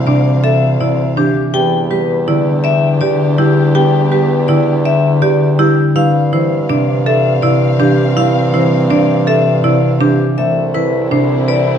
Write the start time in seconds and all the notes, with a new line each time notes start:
Already playing: D2 E3 G3 C4 F5
0.07 C3 D4 D5
0.44 A4 E5
0.80 C3 E4 D5
1.17 E3 D4 G4
1.54 E2 B3 D4 G4 G5
1.91 G3 G4 B4
2.27 D3 E4 D5
2.64 D5 E5
3.01 D3 G4 D5
3.38 G3 E4 G4
3.75 B3 G4 G5
4.12 G3 G4 B4
4.48 D3 E4 D5
4.85 D5 E5
5.22 D3 G4 D5
5.59 G3 E4 G4
5.95 G2 G3 C4 E4 F5
6.32 E3 E4 C5
6.69 C3 D4 D5
7.06 A4 E5
7.42 C3 E4 D5
7.80 E3 D4 G4
8.16 G3 E4 F5
8.54 E3 E4 C5
8.90 C3 D4 D5
9.27 A4 E5
9.64 C3 E4 D5
10.01 E3 D4 G4
10.37 C2 A3 C4 E4 E5
10.74 E3 E4 B4
11.11 C3 D4 C5
11.48 B4 D5